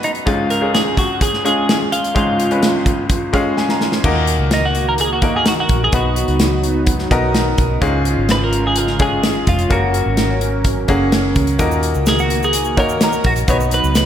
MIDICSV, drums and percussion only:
0, 0, Header, 1, 2, 480
1, 0, Start_track
1, 0, Tempo, 472069
1, 270, Time_signature, 4, 2, 24, 8
1, 14292, End_track
2, 0, Start_track
2, 0, Title_t, "Drums"
2, 32, Note_on_c, 9, 42, 54
2, 134, Note_off_c, 9, 42, 0
2, 151, Note_on_c, 9, 42, 43
2, 253, Note_off_c, 9, 42, 0
2, 271, Note_on_c, 9, 42, 69
2, 272, Note_on_c, 9, 36, 90
2, 373, Note_off_c, 9, 42, 0
2, 374, Note_off_c, 9, 36, 0
2, 512, Note_on_c, 9, 42, 64
2, 614, Note_off_c, 9, 42, 0
2, 758, Note_on_c, 9, 42, 78
2, 760, Note_on_c, 9, 38, 88
2, 859, Note_off_c, 9, 42, 0
2, 861, Note_off_c, 9, 38, 0
2, 990, Note_on_c, 9, 36, 74
2, 999, Note_on_c, 9, 42, 62
2, 1092, Note_off_c, 9, 36, 0
2, 1100, Note_off_c, 9, 42, 0
2, 1231, Note_on_c, 9, 36, 76
2, 1231, Note_on_c, 9, 42, 87
2, 1333, Note_off_c, 9, 36, 0
2, 1333, Note_off_c, 9, 42, 0
2, 1358, Note_on_c, 9, 38, 30
2, 1459, Note_off_c, 9, 38, 0
2, 1480, Note_on_c, 9, 42, 51
2, 1582, Note_off_c, 9, 42, 0
2, 1720, Note_on_c, 9, 42, 75
2, 1721, Note_on_c, 9, 38, 91
2, 1822, Note_off_c, 9, 42, 0
2, 1823, Note_off_c, 9, 38, 0
2, 1956, Note_on_c, 9, 42, 55
2, 2058, Note_off_c, 9, 42, 0
2, 2078, Note_on_c, 9, 42, 47
2, 2180, Note_off_c, 9, 42, 0
2, 2194, Note_on_c, 9, 36, 83
2, 2195, Note_on_c, 9, 42, 71
2, 2295, Note_off_c, 9, 36, 0
2, 2297, Note_off_c, 9, 42, 0
2, 2436, Note_on_c, 9, 42, 65
2, 2538, Note_off_c, 9, 42, 0
2, 2551, Note_on_c, 9, 42, 36
2, 2653, Note_off_c, 9, 42, 0
2, 2670, Note_on_c, 9, 42, 82
2, 2672, Note_on_c, 9, 38, 94
2, 2771, Note_off_c, 9, 42, 0
2, 2774, Note_off_c, 9, 38, 0
2, 2908, Note_on_c, 9, 36, 77
2, 2912, Note_on_c, 9, 42, 66
2, 3010, Note_off_c, 9, 36, 0
2, 3014, Note_off_c, 9, 42, 0
2, 3147, Note_on_c, 9, 42, 81
2, 3149, Note_on_c, 9, 36, 88
2, 3249, Note_off_c, 9, 42, 0
2, 3251, Note_off_c, 9, 36, 0
2, 3392, Note_on_c, 9, 36, 72
2, 3394, Note_on_c, 9, 42, 51
2, 3494, Note_off_c, 9, 36, 0
2, 3496, Note_off_c, 9, 42, 0
2, 3634, Note_on_c, 9, 38, 45
2, 3736, Note_off_c, 9, 38, 0
2, 3751, Note_on_c, 9, 38, 56
2, 3852, Note_off_c, 9, 38, 0
2, 3871, Note_on_c, 9, 38, 63
2, 3973, Note_off_c, 9, 38, 0
2, 3987, Note_on_c, 9, 38, 64
2, 4089, Note_off_c, 9, 38, 0
2, 4108, Note_on_c, 9, 36, 88
2, 4109, Note_on_c, 9, 49, 78
2, 4210, Note_off_c, 9, 36, 0
2, 4211, Note_off_c, 9, 49, 0
2, 4346, Note_on_c, 9, 42, 64
2, 4447, Note_off_c, 9, 42, 0
2, 4585, Note_on_c, 9, 42, 83
2, 4587, Note_on_c, 9, 38, 102
2, 4687, Note_off_c, 9, 42, 0
2, 4689, Note_off_c, 9, 38, 0
2, 4828, Note_on_c, 9, 42, 64
2, 4929, Note_off_c, 9, 42, 0
2, 5064, Note_on_c, 9, 42, 85
2, 5166, Note_off_c, 9, 42, 0
2, 5307, Note_on_c, 9, 42, 51
2, 5309, Note_on_c, 9, 36, 80
2, 5409, Note_off_c, 9, 42, 0
2, 5411, Note_off_c, 9, 36, 0
2, 5548, Note_on_c, 9, 42, 85
2, 5549, Note_on_c, 9, 38, 92
2, 5650, Note_off_c, 9, 38, 0
2, 5650, Note_off_c, 9, 42, 0
2, 5785, Note_on_c, 9, 42, 53
2, 5790, Note_on_c, 9, 36, 76
2, 5887, Note_off_c, 9, 42, 0
2, 5892, Note_off_c, 9, 36, 0
2, 6024, Note_on_c, 9, 42, 76
2, 6028, Note_on_c, 9, 36, 91
2, 6126, Note_off_c, 9, 42, 0
2, 6130, Note_off_c, 9, 36, 0
2, 6266, Note_on_c, 9, 42, 63
2, 6368, Note_off_c, 9, 42, 0
2, 6385, Note_on_c, 9, 42, 36
2, 6487, Note_off_c, 9, 42, 0
2, 6503, Note_on_c, 9, 42, 89
2, 6505, Note_on_c, 9, 38, 95
2, 6605, Note_off_c, 9, 42, 0
2, 6607, Note_off_c, 9, 38, 0
2, 6747, Note_on_c, 9, 42, 62
2, 6849, Note_off_c, 9, 42, 0
2, 6981, Note_on_c, 9, 42, 89
2, 6986, Note_on_c, 9, 36, 81
2, 7083, Note_off_c, 9, 42, 0
2, 7088, Note_off_c, 9, 36, 0
2, 7106, Note_on_c, 9, 38, 32
2, 7207, Note_off_c, 9, 38, 0
2, 7230, Note_on_c, 9, 36, 77
2, 7230, Note_on_c, 9, 42, 54
2, 7331, Note_off_c, 9, 36, 0
2, 7332, Note_off_c, 9, 42, 0
2, 7469, Note_on_c, 9, 38, 98
2, 7469, Note_on_c, 9, 42, 80
2, 7570, Note_off_c, 9, 42, 0
2, 7571, Note_off_c, 9, 38, 0
2, 7706, Note_on_c, 9, 42, 58
2, 7711, Note_on_c, 9, 36, 78
2, 7808, Note_off_c, 9, 42, 0
2, 7813, Note_off_c, 9, 36, 0
2, 7948, Note_on_c, 9, 42, 72
2, 7949, Note_on_c, 9, 36, 84
2, 8050, Note_off_c, 9, 36, 0
2, 8050, Note_off_c, 9, 42, 0
2, 8189, Note_on_c, 9, 42, 64
2, 8290, Note_off_c, 9, 42, 0
2, 8427, Note_on_c, 9, 42, 86
2, 8429, Note_on_c, 9, 38, 94
2, 8529, Note_off_c, 9, 42, 0
2, 8531, Note_off_c, 9, 38, 0
2, 8670, Note_on_c, 9, 42, 62
2, 8772, Note_off_c, 9, 42, 0
2, 8904, Note_on_c, 9, 42, 85
2, 9005, Note_off_c, 9, 42, 0
2, 9021, Note_on_c, 9, 38, 33
2, 9123, Note_off_c, 9, 38, 0
2, 9145, Note_on_c, 9, 42, 56
2, 9149, Note_on_c, 9, 36, 80
2, 9246, Note_off_c, 9, 42, 0
2, 9251, Note_off_c, 9, 36, 0
2, 9390, Note_on_c, 9, 42, 84
2, 9391, Note_on_c, 9, 38, 95
2, 9492, Note_off_c, 9, 38, 0
2, 9492, Note_off_c, 9, 42, 0
2, 9629, Note_on_c, 9, 42, 61
2, 9632, Note_on_c, 9, 36, 78
2, 9731, Note_off_c, 9, 42, 0
2, 9733, Note_off_c, 9, 36, 0
2, 9747, Note_on_c, 9, 42, 46
2, 9849, Note_off_c, 9, 42, 0
2, 9867, Note_on_c, 9, 42, 69
2, 9869, Note_on_c, 9, 36, 99
2, 9969, Note_off_c, 9, 42, 0
2, 9971, Note_off_c, 9, 36, 0
2, 10107, Note_on_c, 9, 42, 67
2, 10209, Note_off_c, 9, 42, 0
2, 10343, Note_on_c, 9, 42, 89
2, 10345, Note_on_c, 9, 38, 90
2, 10445, Note_off_c, 9, 42, 0
2, 10447, Note_off_c, 9, 38, 0
2, 10587, Note_on_c, 9, 42, 62
2, 10688, Note_off_c, 9, 42, 0
2, 10823, Note_on_c, 9, 42, 80
2, 10826, Note_on_c, 9, 36, 84
2, 10925, Note_off_c, 9, 42, 0
2, 10928, Note_off_c, 9, 36, 0
2, 11065, Note_on_c, 9, 42, 54
2, 11069, Note_on_c, 9, 36, 74
2, 11167, Note_off_c, 9, 42, 0
2, 11171, Note_off_c, 9, 36, 0
2, 11310, Note_on_c, 9, 42, 87
2, 11311, Note_on_c, 9, 38, 109
2, 11412, Note_off_c, 9, 38, 0
2, 11412, Note_off_c, 9, 42, 0
2, 11547, Note_on_c, 9, 42, 61
2, 11551, Note_on_c, 9, 36, 82
2, 11649, Note_off_c, 9, 42, 0
2, 11652, Note_off_c, 9, 36, 0
2, 11664, Note_on_c, 9, 42, 45
2, 11766, Note_off_c, 9, 42, 0
2, 11787, Note_on_c, 9, 42, 76
2, 11787, Note_on_c, 9, 82, 54
2, 11788, Note_on_c, 9, 36, 92
2, 11888, Note_off_c, 9, 42, 0
2, 11888, Note_off_c, 9, 82, 0
2, 11890, Note_off_c, 9, 36, 0
2, 11910, Note_on_c, 9, 82, 45
2, 12012, Note_off_c, 9, 82, 0
2, 12027, Note_on_c, 9, 42, 68
2, 12028, Note_on_c, 9, 82, 39
2, 12129, Note_off_c, 9, 42, 0
2, 12130, Note_off_c, 9, 82, 0
2, 12146, Note_on_c, 9, 82, 40
2, 12248, Note_off_c, 9, 82, 0
2, 12264, Note_on_c, 9, 82, 60
2, 12271, Note_on_c, 9, 42, 83
2, 12273, Note_on_c, 9, 38, 98
2, 12366, Note_off_c, 9, 82, 0
2, 12372, Note_off_c, 9, 42, 0
2, 12374, Note_off_c, 9, 38, 0
2, 12391, Note_on_c, 9, 82, 38
2, 12493, Note_off_c, 9, 82, 0
2, 12509, Note_on_c, 9, 42, 66
2, 12610, Note_off_c, 9, 42, 0
2, 12637, Note_on_c, 9, 82, 46
2, 12738, Note_off_c, 9, 82, 0
2, 12741, Note_on_c, 9, 42, 94
2, 12748, Note_on_c, 9, 82, 59
2, 12842, Note_off_c, 9, 42, 0
2, 12850, Note_off_c, 9, 82, 0
2, 12857, Note_on_c, 9, 82, 44
2, 12959, Note_off_c, 9, 82, 0
2, 12988, Note_on_c, 9, 42, 52
2, 12989, Note_on_c, 9, 36, 75
2, 13090, Note_off_c, 9, 42, 0
2, 13091, Note_off_c, 9, 36, 0
2, 13108, Note_on_c, 9, 82, 47
2, 13209, Note_off_c, 9, 82, 0
2, 13226, Note_on_c, 9, 42, 84
2, 13227, Note_on_c, 9, 38, 104
2, 13229, Note_on_c, 9, 82, 54
2, 13328, Note_off_c, 9, 38, 0
2, 13328, Note_off_c, 9, 42, 0
2, 13331, Note_off_c, 9, 82, 0
2, 13345, Note_on_c, 9, 82, 40
2, 13447, Note_off_c, 9, 82, 0
2, 13464, Note_on_c, 9, 42, 59
2, 13469, Note_on_c, 9, 36, 83
2, 13566, Note_off_c, 9, 42, 0
2, 13571, Note_off_c, 9, 36, 0
2, 13583, Note_on_c, 9, 42, 50
2, 13589, Note_on_c, 9, 82, 46
2, 13685, Note_off_c, 9, 42, 0
2, 13690, Note_off_c, 9, 82, 0
2, 13705, Note_on_c, 9, 42, 76
2, 13708, Note_on_c, 9, 36, 88
2, 13711, Note_on_c, 9, 82, 54
2, 13806, Note_off_c, 9, 42, 0
2, 13809, Note_off_c, 9, 36, 0
2, 13813, Note_off_c, 9, 82, 0
2, 13833, Note_on_c, 9, 82, 49
2, 13935, Note_off_c, 9, 82, 0
2, 13944, Note_on_c, 9, 42, 68
2, 13946, Note_on_c, 9, 82, 42
2, 14046, Note_off_c, 9, 42, 0
2, 14048, Note_off_c, 9, 82, 0
2, 14072, Note_on_c, 9, 82, 45
2, 14174, Note_off_c, 9, 82, 0
2, 14185, Note_on_c, 9, 82, 65
2, 14187, Note_on_c, 9, 42, 83
2, 14189, Note_on_c, 9, 38, 97
2, 14287, Note_off_c, 9, 82, 0
2, 14288, Note_off_c, 9, 42, 0
2, 14291, Note_off_c, 9, 38, 0
2, 14292, End_track
0, 0, End_of_file